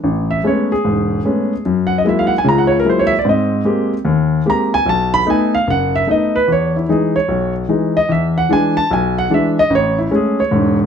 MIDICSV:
0, 0, Header, 1, 2, 480
1, 0, Start_track
1, 0, Tempo, 402955
1, 37, Time_signature, 4, 2, 24, 8
1, 12936, End_track
2, 0, Start_track
2, 0, Title_t, "Grand piano"
2, 0, Program_c, 0, 0
2, 44, Note_on_c, 0, 33, 69
2, 364, Note_on_c, 0, 76, 85
2, 456, Note_off_c, 0, 33, 0
2, 516, Note_on_c, 0, 56, 57
2, 520, Note_off_c, 0, 76, 0
2, 523, Note_on_c, 0, 57, 51
2, 526, Note_on_c, 0, 59, 53
2, 531, Note_on_c, 0, 61, 64
2, 561, Note_on_c, 0, 73, 70
2, 842, Note_off_c, 0, 73, 0
2, 845, Note_off_c, 0, 56, 0
2, 848, Note_off_c, 0, 57, 0
2, 850, Note_off_c, 0, 59, 0
2, 852, Note_off_c, 0, 61, 0
2, 858, Note_on_c, 0, 68, 79
2, 1006, Note_on_c, 0, 28, 64
2, 1009, Note_on_c, 0, 44, 64
2, 1416, Note_off_c, 0, 28, 0
2, 1418, Note_off_c, 0, 44, 0
2, 1485, Note_on_c, 0, 57, 47
2, 1489, Note_on_c, 0, 56, 49
2, 1494, Note_on_c, 0, 59, 44
2, 1494, Note_on_c, 0, 61, 58
2, 1809, Note_off_c, 0, 57, 0
2, 1811, Note_off_c, 0, 56, 0
2, 1813, Note_off_c, 0, 59, 0
2, 1813, Note_off_c, 0, 61, 0
2, 1923, Note_off_c, 0, 68, 0
2, 1972, Note_on_c, 0, 42, 69
2, 2224, Note_on_c, 0, 78, 85
2, 2326, Note_off_c, 0, 78, 0
2, 2361, Note_on_c, 0, 75, 71
2, 2379, Note_off_c, 0, 42, 0
2, 2436, Note_on_c, 0, 54, 59
2, 2438, Note_off_c, 0, 75, 0
2, 2442, Note_on_c, 0, 56, 53
2, 2446, Note_on_c, 0, 58, 55
2, 2452, Note_on_c, 0, 64, 61
2, 2488, Note_on_c, 0, 76, 72
2, 2608, Note_on_c, 0, 77, 80
2, 2614, Note_off_c, 0, 76, 0
2, 2703, Note_on_c, 0, 78, 84
2, 2751, Note_off_c, 0, 77, 0
2, 2764, Note_off_c, 0, 54, 0
2, 2767, Note_off_c, 0, 56, 0
2, 2769, Note_off_c, 0, 58, 0
2, 2772, Note_off_c, 0, 64, 0
2, 2806, Note_off_c, 0, 78, 0
2, 2838, Note_on_c, 0, 80, 82
2, 2911, Note_on_c, 0, 49, 64
2, 2913, Note_on_c, 0, 37, 68
2, 2916, Note_off_c, 0, 80, 0
2, 2961, Note_on_c, 0, 82, 87
2, 3076, Note_on_c, 0, 78, 82
2, 3090, Note_off_c, 0, 82, 0
2, 3185, Note_on_c, 0, 73, 78
2, 3225, Note_off_c, 0, 78, 0
2, 3287, Note_off_c, 0, 73, 0
2, 3328, Note_off_c, 0, 49, 0
2, 3329, Note_off_c, 0, 37, 0
2, 3331, Note_on_c, 0, 70, 80
2, 3391, Note_on_c, 0, 54, 54
2, 3393, Note_on_c, 0, 56, 49
2, 3401, Note_on_c, 0, 58, 49
2, 3401, Note_on_c, 0, 64, 60
2, 3403, Note_off_c, 0, 70, 0
2, 3449, Note_on_c, 0, 72, 73
2, 3567, Note_on_c, 0, 73, 78
2, 3574, Note_off_c, 0, 72, 0
2, 3654, Note_on_c, 0, 76, 98
2, 3710, Note_off_c, 0, 73, 0
2, 3721, Note_off_c, 0, 54, 0
2, 3722, Note_off_c, 0, 56, 0
2, 3726, Note_off_c, 0, 58, 0
2, 3726, Note_off_c, 0, 64, 0
2, 3761, Note_off_c, 0, 76, 0
2, 3797, Note_on_c, 0, 74, 75
2, 3867, Note_on_c, 0, 60, 68
2, 3874, Note_on_c, 0, 44, 64
2, 3875, Note_off_c, 0, 74, 0
2, 3920, Note_on_c, 0, 75, 77
2, 4286, Note_off_c, 0, 60, 0
2, 4289, Note_off_c, 0, 44, 0
2, 4343, Note_on_c, 0, 56, 56
2, 4345, Note_on_c, 0, 58, 55
2, 4352, Note_on_c, 0, 60, 53
2, 4355, Note_on_c, 0, 67, 62
2, 4641, Note_off_c, 0, 75, 0
2, 4677, Note_off_c, 0, 56, 0
2, 4678, Note_off_c, 0, 58, 0
2, 4682, Note_off_c, 0, 60, 0
2, 4683, Note_off_c, 0, 67, 0
2, 4821, Note_on_c, 0, 39, 72
2, 5242, Note_off_c, 0, 39, 0
2, 5308, Note_on_c, 0, 56, 54
2, 5310, Note_on_c, 0, 60, 49
2, 5312, Note_on_c, 0, 58, 50
2, 5318, Note_on_c, 0, 67, 62
2, 5357, Note_on_c, 0, 82, 89
2, 5639, Note_off_c, 0, 82, 0
2, 5640, Note_off_c, 0, 56, 0
2, 5641, Note_off_c, 0, 60, 0
2, 5642, Note_off_c, 0, 58, 0
2, 5645, Note_off_c, 0, 67, 0
2, 5647, Note_on_c, 0, 80, 101
2, 5786, Note_on_c, 0, 35, 68
2, 5800, Note_off_c, 0, 80, 0
2, 5828, Note_on_c, 0, 81, 93
2, 6114, Note_off_c, 0, 81, 0
2, 6120, Note_on_c, 0, 83, 105
2, 6205, Note_off_c, 0, 35, 0
2, 6265, Note_on_c, 0, 57, 60
2, 6273, Note_on_c, 0, 59, 56
2, 6274, Note_on_c, 0, 63, 66
2, 6276, Note_off_c, 0, 83, 0
2, 6313, Note_on_c, 0, 80, 83
2, 6597, Note_off_c, 0, 80, 0
2, 6598, Note_off_c, 0, 57, 0
2, 6602, Note_off_c, 0, 59, 0
2, 6602, Note_off_c, 0, 63, 0
2, 6605, Note_on_c, 0, 77, 89
2, 6755, Note_on_c, 0, 30, 75
2, 6759, Note_off_c, 0, 77, 0
2, 6795, Note_on_c, 0, 78, 91
2, 7078, Note_off_c, 0, 78, 0
2, 7094, Note_on_c, 0, 76, 90
2, 7170, Note_off_c, 0, 30, 0
2, 7233, Note_on_c, 0, 57, 54
2, 7233, Note_on_c, 0, 59, 48
2, 7240, Note_on_c, 0, 63, 59
2, 7243, Note_off_c, 0, 76, 0
2, 7279, Note_on_c, 0, 75, 78
2, 7559, Note_off_c, 0, 75, 0
2, 7562, Note_off_c, 0, 57, 0
2, 7562, Note_off_c, 0, 59, 0
2, 7565, Note_off_c, 0, 63, 0
2, 7571, Note_on_c, 0, 71, 89
2, 7716, Note_on_c, 0, 40, 62
2, 7722, Note_off_c, 0, 71, 0
2, 7770, Note_on_c, 0, 73, 80
2, 8045, Note_off_c, 0, 73, 0
2, 8056, Note_on_c, 0, 64, 56
2, 8130, Note_off_c, 0, 40, 0
2, 8204, Note_off_c, 0, 64, 0
2, 8207, Note_on_c, 0, 52, 56
2, 8211, Note_on_c, 0, 56, 51
2, 8213, Note_on_c, 0, 63, 62
2, 8245, Note_on_c, 0, 68, 66
2, 8522, Note_off_c, 0, 68, 0
2, 8526, Note_on_c, 0, 73, 80
2, 8529, Note_off_c, 0, 52, 0
2, 8531, Note_off_c, 0, 56, 0
2, 8532, Note_off_c, 0, 63, 0
2, 8677, Note_on_c, 0, 35, 64
2, 8963, Note_off_c, 0, 73, 0
2, 9091, Note_off_c, 0, 35, 0
2, 9156, Note_on_c, 0, 52, 55
2, 9158, Note_on_c, 0, 56, 50
2, 9165, Note_on_c, 0, 63, 57
2, 9484, Note_off_c, 0, 52, 0
2, 9485, Note_off_c, 0, 56, 0
2, 9488, Note_off_c, 0, 63, 0
2, 9490, Note_on_c, 0, 75, 91
2, 9635, Note_on_c, 0, 40, 68
2, 9642, Note_off_c, 0, 75, 0
2, 9668, Note_on_c, 0, 76, 83
2, 9954, Note_off_c, 0, 76, 0
2, 9978, Note_on_c, 0, 78, 87
2, 10050, Note_off_c, 0, 40, 0
2, 10115, Note_on_c, 0, 52, 58
2, 10126, Note_off_c, 0, 78, 0
2, 10126, Note_on_c, 0, 56, 54
2, 10131, Note_on_c, 0, 62, 66
2, 10157, Note_on_c, 0, 80, 87
2, 10439, Note_off_c, 0, 80, 0
2, 10443, Note_off_c, 0, 52, 0
2, 10446, Note_on_c, 0, 81, 96
2, 10449, Note_off_c, 0, 56, 0
2, 10451, Note_off_c, 0, 62, 0
2, 10599, Note_off_c, 0, 81, 0
2, 10610, Note_on_c, 0, 35, 70
2, 10639, Note_on_c, 0, 80, 85
2, 10920, Note_off_c, 0, 80, 0
2, 10941, Note_on_c, 0, 78, 86
2, 11018, Note_off_c, 0, 35, 0
2, 11077, Note_on_c, 0, 52, 54
2, 11086, Note_on_c, 0, 56, 50
2, 11087, Note_off_c, 0, 78, 0
2, 11089, Note_on_c, 0, 62, 64
2, 11126, Note_on_c, 0, 76, 84
2, 11403, Note_off_c, 0, 76, 0
2, 11404, Note_off_c, 0, 52, 0
2, 11409, Note_off_c, 0, 56, 0
2, 11410, Note_off_c, 0, 62, 0
2, 11427, Note_on_c, 0, 75, 95
2, 11557, Note_on_c, 0, 33, 69
2, 11571, Note_off_c, 0, 75, 0
2, 11615, Note_on_c, 0, 73, 88
2, 11888, Note_off_c, 0, 73, 0
2, 11892, Note_on_c, 0, 64, 64
2, 11971, Note_off_c, 0, 33, 0
2, 12041, Note_on_c, 0, 56, 63
2, 12043, Note_off_c, 0, 64, 0
2, 12044, Note_on_c, 0, 57, 54
2, 12046, Note_on_c, 0, 61, 66
2, 12096, Note_on_c, 0, 68, 68
2, 12367, Note_off_c, 0, 56, 0
2, 12368, Note_off_c, 0, 57, 0
2, 12369, Note_off_c, 0, 61, 0
2, 12369, Note_off_c, 0, 68, 0
2, 12387, Note_on_c, 0, 73, 79
2, 12524, Note_on_c, 0, 28, 73
2, 12524, Note_on_c, 0, 44, 73
2, 12815, Note_off_c, 0, 73, 0
2, 12935, Note_off_c, 0, 28, 0
2, 12935, Note_off_c, 0, 44, 0
2, 12936, End_track
0, 0, End_of_file